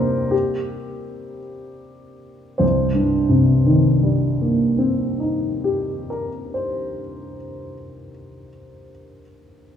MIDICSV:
0, 0, Header, 1, 2, 480
1, 0, Start_track
1, 0, Key_signature, -3, "minor"
1, 0, Tempo, 679502
1, 227, Time_signature, 3, 2, 24, 8
1, 715, Tempo, 757576
1, 1195, Tempo, 855920
1, 5680, End_track
2, 0, Start_track
2, 0, Title_t, "Grand piano"
2, 0, Program_c, 0, 0
2, 0, Control_c, 0, 64, 127
2, 0, Note_on_c, 0, 48, 42
2, 0, Note_on_c, 0, 55, 29
2, 0, Note_on_c, 0, 58, 27
2, 0, Note_on_c, 0, 60, 31
2, 0, Note_on_c, 0, 70, 53
2, 0, Note_on_c, 0, 72, 54
2, 0, Note_on_c, 0, 74, 42
2, 205, Note_off_c, 0, 48, 0
2, 218, Note_on_c, 0, 67, 40
2, 225, Note_off_c, 0, 70, 0
2, 241, Control_c, 0, 64, 0
2, 244, Note_off_c, 0, 72, 0
2, 244, Note_off_c, 0, 74, 0
2, 370, Control_c, 0, 64, 127
2, 945, Note_off_c, 0, 67, 0
2, 1644, Note_off_c, 0, 55, 0
2, 1645, Note_off_c, 0, 58, 0
2, 1646, Note_off_c, 0, 60, 0
2, 1649, Note_on_c, 0, 72, 31
2, 1658, Note_on_c, 0, 36, 30
2, 1683, Control_c, 0, 64, 0
2, 1813, Control_c, 0, 64, 127
2, 1856, Note_on_c, 0, 43, 25
2, 2049, Note_on_c, 0, 48, 28
2, 2256, Note_on_c, 0, 51, 27
2, 2461, Note_on_c, 0, 55, 23
2, 2679, Note_on_c, 0, 58, 26
2, 2886, Note_on_c, 0, 60, 24
2, 3119, Note_on_c, 0, 63, 20
2, 3366, Note_on_c, 0, 67, 22
2, 3624, Note_on_c, 0, 70, 25
2, 3721, Note_off_c, 0, 72, 0
2, 3730, Note_off_c, 0, 36, 0
2, 3870, Note_on_c, 0, 72, 18
2, 3928, Note_off_c, 0, 43, 0
2, 4121, Note_off_c, 0, 48, 0
2, 4328, Note_off_c, 0, 51, 0
2, 4534, Note_off_c, 0, 55, 0
2, 4751, Note_off_c, 0, 58, 0
2, 4958, Note_off_c, 0, 60, 0
2, 5191, Note_off_c, 0, 63, 0
2, 5369, Note_off_c, 0, 67, 0
2, 5370, Note_off_c, 0, 72, 0
2, 5374, Note_off_c, 0, 70, 0
2, 5680, End_track
0, 0, End_of_file